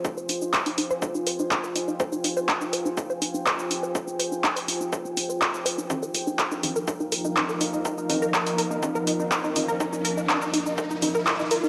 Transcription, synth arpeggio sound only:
X:1
M:4/4
L:1/16
Q:1/4=123
K:Fm
V:1 name="Synth arpeggio sound"
E c E E c E E c E E c E E c E E | c E E c E E c E E c E E c E E c | E E c E E c E E c E E c E E c E | E B E E B E E B E E B E E B E E |
B E E B E E B E E B E E B E E B | E E B E E B E E B E E B E E B E |]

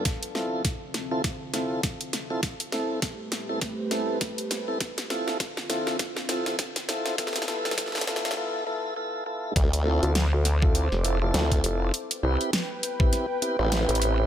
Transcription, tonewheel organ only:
X:1
M:4/4
L:1/16
Q:"Swing 16ths" 1/4=101
K:Ddor
V:1 name="Tonewheel organ"
z2 [CEFA]2 z3 [CEFA] z2 [CEFA]2 z3 [CEFA] | z2 [CEA]2 z3 [CEA] z2 [CEA]2 z3 [CEA] | z2 [CEFA]2 z2 [CEFA]2 z2 [CEFA]2 z2 [CEFA]2 | [B,EFA]2 [B,EFA]2 [B,EFA]2 [B,EFA]2 [B,EFA]2 [B,EFA]2 [B,EFA]2 [B,EFA]2 |
z2 [CEFA]2 z3 [CEFA]2 z [CEFA] [CEFA]4- [CEFA] | z2 [CEGB]2 z3 [CEGB]2 z [CEGB] [CEGB]4- [CEGB] |]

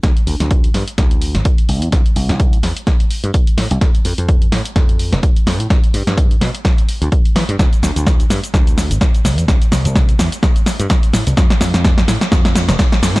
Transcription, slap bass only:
X:1
M:4/4
L:1/16
Q:"Swing 16ths" 1/4=127
K:Ddor
V:1 name="Slap bass" clef=bass
D,, z D,, D,,2 z G,, z D,,3 A,,, z2 C,, E,, | C,, z C,, C,,2 z E,, z4 G,, z2 A,, C,, | F,, z F,, F,,2 z A,, z F,,3 F,,, z2 F,, A,, | G,, z G,, G,,2 z B,, z4 D,, z2 E, G,, |
D,, z D,, D,,2 z G,, z D,,3 A,,, z2 C,, E,, | C,, z C,, C,,2 z E,, z4 G,, z2 A,, C,, | F,, z F,, F,,2 z A,, z F,,3 F,,, z2 F,, A,, |]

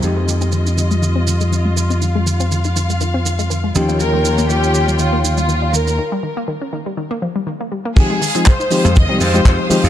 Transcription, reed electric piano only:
X:1
M:4/4
L:1/16
Q:"Swing 16ths" 1/4=121
K:Fm
V:1 name="Reed electric piano"
[F,A,CEG]16- | [F,A,CEG]12- [F,A,CEG]2 [F,B,DEG]2- | [F,B,DEG]16 | z16 |
[F,A,CEG]2 z [F,A,CEF] z2 [F,A,CEG] z2 [F,A,CEG]2 [F,A,CEG]3 [F,A,CEG]2 |]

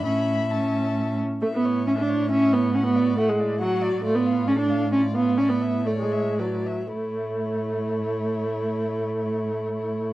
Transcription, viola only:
X:1
M:3/4
L:1/16
Q:1/4=131
K:A
V:1 name="Viola"
C4 C6 z2 | A, B,3 C D3 C2 B,2 | C B,3 A, G,3 F,4 | A, B,3 C D3 C2 B,2 |
C B,3 A, G,3 F,4 | A,12- | A,12 |]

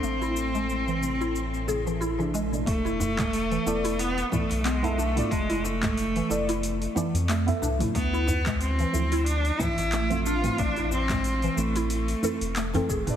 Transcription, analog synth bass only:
X:1
M:4/4
L:1/16
Q:"Swing 16ths" 1/4=91
K:Am
V:1 name="Analog synth bass" clef=bass
A,,,16 | E,,,4- E,,, z E,,,3 z2 B,,,4 z | F,,,4- F,,, z F,,,3 z2 F,,2 z C,, z | D,,4- D,, z D,,3 z2 A,,,4 z |
A,,,4- A,,, z A,,,3 z2 E,,,2 z E,,, z |]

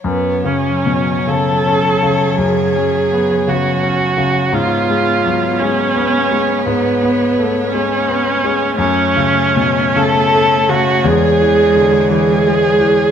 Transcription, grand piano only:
X:1
M:12/8
L:1/8
Q:3/8=56
K:F#m
V:1 name="Grand piano" clef=bass
F,, C, B,, C, C C, F,, C B, C, C C, | G,, G, F, G, B, G, G,, B, A, G, B, G, | F,, C, B,, C, A, C, E,, E, D, E, G, E, |]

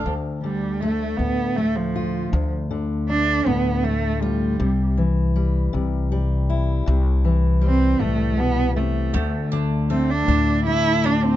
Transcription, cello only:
X:1
M:6/8
L:1/16
Q:3/8=53
K:Ddor
V:1 name="Cello"
z2 G,2 A,2 B,2 A, F,3- | F, z3 D2 B,2 A,2 G,2- | G,2 z8 z2 | z4 C2 A,2 B,2 A,2- |
A,2 z2 C D3 E2 D C |]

